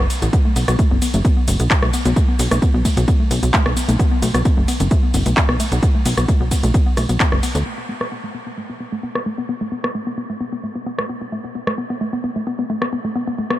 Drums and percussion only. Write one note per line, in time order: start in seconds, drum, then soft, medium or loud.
0.10 open hi-hat loud
0.10 ride medium
0.10 shaker medium
0.22 closed hi-hat medium
0.22 shaker soft
0.33 kick loud
0.33 closed hi-hat medium
0.33 shaker soft
0.56 open hi-hat loud
0.56 ride medium
0.56 shaker medium
0.68 cross-stick loud
0.68 closed hi-hat medium
0.68 shaker soft
0.79 kick loud
0.79 closed hi-hat medium
0.79 shaker soft
1.02 open hi-hat medium
1.02 ride medium
1.02 shaker medium
1.14 closed hi-hat medium
1.14 shaker soft
1.25 kick loud
1.25 closed hi-hat medium
1.25 shaker soft
1.48 open hi-hat loud
1.48 ride medium
1.48 shaker medium
1.60 closed hi-hat medium
1.60 shaker soft
1.71 kick loud
1.71 clap loud
1.71 closed hi-hat medium
1.71 shaker soft
1.83 cross-stick medium
1.93 open hi-hat loud
1.93 ride medium
1.93 shaker medium
2.05 closed hi-hat medium
2.05 shaker soft
2.16 kick loud
2.16 closed hi-hat medium
2.16 shaker soft
2.39 open hi-hat loud
2.39 ride medium
2.39 shaker medium
2.51 cross-stick loud
2.51 closed hi-hat medium
2.51 shaker soft
2.62 kick loud
2.62 closed hi-hat medium
2.62 shaker soft
2.85 kick medium
2.85 open hi-hat medium
2.85 ride medium
2.85 shaker medium
2.97 closed hi-hat medium
2.97 shaker soft
3.08 kick loud
3.08 closed hi-hat medium
3.08 shaker soft
3.31 open hi-hat loud
3.31 ride medium
3.31 shaker medium
3.43 closed hi-hat medium
3.43 shaker soft
3.54 kick loud
3.54 clap loud
3.54 closed hi-hat medium
3.54 shaker soft
3.66 cross-stick medium
3.77 open hi-hat medium
3.77 ride medium
3.77 shaker medium
3.89 closed hi-hat medium
3.89 shaker soft
3.99 kick loud
3.99 closed hi-hat medium
3.99 shaker soft
4.22 open hi-hat loud
4.22 ride medium
4.22 shaker medium
4.34 cross-stick medium
4.34 closed hi-hat medium
4.34 shaker soft
4.45 kick loud
4.45 closed hi-hat medium
4.45 shaker soft
4.68 open hi-hat medium
4.68 ride medium
4.68 shaker medium
4.80 closed hi-hat medium
4.80 shaker soft
4.91 kick loud
4.91 closed hi-hat medium
4.91 shaker soft
5.14 open hi-hat loud
5.14 ride medium
5.14 shaker medium
5.26 closed hi-hat medium
5.26 shaker soft
5.37 kick loud
5.37 clap loud
5.37 closed hi-hat medium
5.37 shaker soft
5.49 cross-stick medium
5.60 open hi-hat medium
5.60 ride medium
5.60 shaker medium
5.72 closed hi-hat medium
5.72 shaker soft
5.83 kick loud
5.83 closed hi-hat medium
5.83 shaker soft
6.06 open hi-hat loud
6.06 ride medium
6.06 shaker medium
6.18 cross-stick medium
6.18 closed hi-hat medium
6.18 shaker soft
6.28 kick loud
6.28 closed hi-hat medium
6.28 shaker soft
6.51 kick medium
6.51 open hi-hat medium
6.51 ride medium
6.51 shaker medium
6.63 closed hi-hat medium
6.63 shaker soft
6.74 kick loud
6.74 closed hi-hat medium
6.74 shaker soft
6.97 cross-stick medium
6.97 open hi-hat loud
6.97 ride medium
6.97 shaker medium
7.09 closed hi-hat medium
7.09 shaker soft
7.20 kick loud
7.20 clap loud
7.20 closed hi-hat medium
7.20 shaker soft
7.32 cross-stick medium
7.43 open hi-hat medium
7.43 ride medium
7.43 shaker medium
7.55 closed hi-hat medium
7.55 shaker soft
7.66 crash medium
8.01 cross-stick medium
9.15 cross-stick medium
9.84 cross-stick medium
10.99 cross-stick medium
11.67 cross-stick medium
12.82 cross-stick medium
13.50 cross-stick medium